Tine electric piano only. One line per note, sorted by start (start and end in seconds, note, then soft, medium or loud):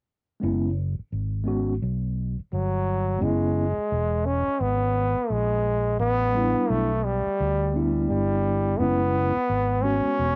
0.40 0.68 G#3 medium
0.40 0.68 B3 medium
0.40 0.69 C#4 medium
0.40 0.69 E4 medium
1.44 1.72 G#3 medium
1.44 1.72 B3 medium
1.44 1.73 C#4 medium
1.44 1.74 F#4 medium
3.19 3.63 G#3 medium
3.19 3.64 B3 medium
3.19 3.65 C#4 medium
3.23 3.65 E4 medium
6.33 6.86 G3 medium
6.33 6.86 B3 medium
6.33 6.43 C#4 soft
6.37 6.88 E4 medium
6.42 6.90 D4 medium
7.73 8.73 G3 medium
7.73 8.73 B3 medium
7.73 8.74 D4 medium
7.73 8.75 E4 medium
8.78 9.30 G#3 medium
8.78 9.31 B3 medium
8.78 9.31 C#4 medium
8.82 9.32 E4 medium
9.81 10.34 G#3 medium
9.81 10.35 B3 medium
9.81 10.36 C#4 medium
9.81 10.36 F#4 medium